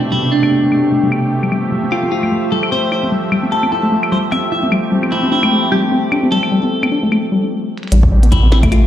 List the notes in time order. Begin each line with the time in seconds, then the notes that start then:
Already playing: B2 C3 A3 G4
0.12 G3 E4
0.23 B3
0.32 D4
0.43 B3, claves
0.52 C4
0.63 A3
0.72 A3, claves
0.92 A3
1.03 G3
1.12 B3, claves
1.23 G3
1.32 C4
1.43 G3, claves
1.52 F3 G3 E5, claves
1.72 G3
1.83 C4
1.92 F4, claves
2.03 C4
2.12 E4 F4
2.23 A3, claves
2.32 A3
2.52 G3 A4
2.63 C4, claves
2.72 C4 C5
2.92 E4 C5, claves
3.03 C4
3.12 G3
3.32 G3, claves
3.43 C4
3.52 A4
3.63 C4, claves
3.72 E4 A4
3.83 A3
3.92 A3
4.03 claves
4.12 G3 C5
4.23 C4
4.32 C4 E5, claves
4.52 E4 E5
4.63 C4
4.72 G3 A3 C4 G4, claves
4.92 G3
5.03 C4, claves
5.12 E4
5.23 C4
5.32 D4 E4
5.43 A3, claves
5.52 A3
5.72 G3 G4, claves
5.83 C4
5.92 C4
6.12 D4, claves
6.23 C4
6.32 G3 A4
6.43 claves
6.52 G3
6.63 C4
6.83 C4, claves
6.92 D4
7.03 A3
7.12 A3, claves
7.32 G3
7.43 C4
7.78 closed hi-hat
7.83 closed hi-hat
7.87 closed hi-hat
7.92 A1 B2 C3 G3 A3 G4, closed hi-hat
8.03 kick
8.12 G3
8.23 B3, closed hi-hat
8.32 E4, kick, closed hi-hat
8.43 B3
8.52 C4 E4, snare
8.63 A3, kick, closed hi-hat, claves
8.72 A3 F4, closed hi-hat, claves